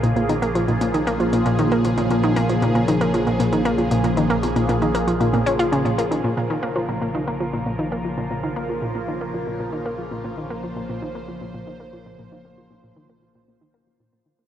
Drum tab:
HH |xxxxxxxxxxxxxxxx|xxxxxxxxxxxxxxxx|xxxxxxxxxxxxxxxx|----------------|
CG |--o-------------|--o-------------|--o------o------|----------------|

HH |----------------|----------------|----------------|
CG |----------------|----------------|----------------|